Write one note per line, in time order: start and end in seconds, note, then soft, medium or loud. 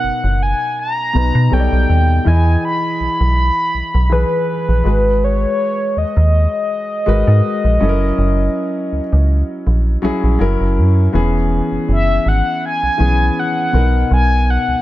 0.00 0.12 F#1 soft
0.00 0.27 B2 medium
0.00 0.27 B3 medium
0.00 0.28 D#4 medium
0.00 0.28 A#4 medium
0.00 0.44 F#5 loud
0.24 0.54 F#1 medium
0.43 0.79 G#5 loud
0.79 1.55 A#5 loud
1.13 1.31 B1 medium
1.13 1.49 B2 medium
1.13 1.51 B3 medium
1.13 1.50 D#4 medium
1.13 1.52 B4 medium
1.35 1.49 B2 loud
1.50 1.68 B1 loud
1.50 2.11 B2 medium
1.50 2.12 G3 medium
1.50 2.12 D#4 medium
1.50 2.12 A4 medium
1.50 1.59 C#5 medium
1.50 2.29 G5 loud
1.59 2.16 D5 medium
1.72 1.86 B1 medium
1.89 2.19 D#2 medium
2.24 2.56 E2 loud
2.24 3.23 E3 medium
2.24 3.24 E4 medium
2.24 3.24 G#4 medium
2.24 3.25 D#5 medium
2.24 2.64 G#5 loud
2.65 4.14 B5 loud
3.00 3.08 B1 medium
3.20 3.50 B1 medium
3.74 3.82 B1 soft
3.94 4.24 B1 loud
4.10 4.83 E3 medium
4.10 4.84 E4 medium
4.10 4.84 G#4 medium
4.10 5.26 B4 loud
4.10 4.85 B4 medium
4.69 4.82 A#1 medium
4.84 5.46 G#1 medium
4.84 6.03 G#3 medium
4.84 6.04 F#4 medium
4.84 6.04 G#4 medium
4.84 6.05 B4 medium
5.24 5.99 C#5 loud
5.97 6.05 D#2 soft
5.97 10.41 D#5 loud
6.17 6.47 D#2 medium
7.06 7.24 G#1 medium
7.06 7.80 G#3 medium
7.06 7.80 F#4 medium
7.06 7.80 A#4 medium
7.06 7.81 B4 loud
7.27 7.41 G#2 loud
7.64 7.78 A#1 medium
7.80 8.12 F#1 medium
7.80 9.00 F#3 medium
7.80 9.00 C#4 medium
7.80 9.00 E4 medium
7.80 7.89 A4 medium
7.89 9.04 A#4 medium
8.18 8.49 F#1 loud
8.92 9.00 C#2 soft
9.13 9.43 C#2 medium
9.67 9.97 A#1 medium
10.02 10.12 A#1 soft
10.02 10.37 F#3 medium
10.02 10.38 C#4 medium
10.02 10.39 E4 medium
10.02 10.41 G#4 loud
10.24 10.37 A#1 medium
10.39 10.57 F#1 loud
10.39 11.00 F#3 medium
10.39 11.01 C#4 medium
10.39 11.01 E4 medium
10.39 11.01 A#4 loud
10.61 10.79 F#1 medium
10.78 11.08 F#2 medium
11.13 11.61 E1 loud
11.13 12.12 E3 medium
11.13 12.12 B3 medium
11.13 12.13 C#4 medium
11.13 12.13 G#4 loud
11.72 11.79 F#1 soft
11.89 12.19 F#1 loud
11.89 12.30 E5 loud
12.26 12.42 G#1 medium
12.26 12.64 F#5 loud
12.66 13.41 G#5 loud
12.83 12.90 B1 soft
12.98 13.30 B1 medium
12.98 13.72 E3 medium
12.98 13.71 B3 medium
12.98 13.73 C#4 medium
12.98 13.73 G#4 medium
13.39 14.12 F#5 loud
13.72 14.04 B1 medium
13.72 14.82 B2 medium
13.72 14.82 B3 medium
13.72 14.82 D#4 medium
13.72 14.82 A#4 medium
14.11 14.58 B1 loud
14.11 14.52 G#5 loud
14.50 14.82 F#5 loud
14.68 14.75 C#2 soft